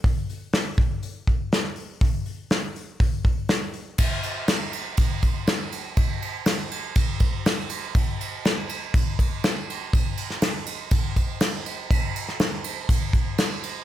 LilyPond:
\new DrumStaff \with { instrumentName = "Drums" } \drummode { \time 4/4 \tempo 4 = 121 <hho bd>8 hho8 <hho sn>8 <hho bd>8 hho8 <hho bd>8 <hho sn>16 sn16 hho8 | <hho bd>8 hho8 <hho sn>8 hho8 <hho bd>8 <hho bd>8 <hho sn>8 hho8 | <cymc bd>8 cymc8 <cymc sn>8 cymc8 <cymc bd>8 <cymc bd>8 <cymc sn>8 cymc8 | <cymc bd>8 cymc8 <cymc sn>8 cymc8 <cymc bd>8 <cymc bd>8 <cymc sn>8 cymc8 |
<cymc bd>8 cymc8 <cymc sn>8 cymc8 <cymc bd>8 <cymc bd>8 <cymc sn>8 cymc8 | <cymc bd>8 cymc16 sn16 <cymc sn>8 cymc8 <cymc bd>8 <cymc bd>8 <cymc sn>8 cymc8 | <cymc bd>8 cymc16 sn16 <cymc sn>8 cymc8 <cymc bd>8 <cymc bd>8 <cymc sn>8 cymc8 | }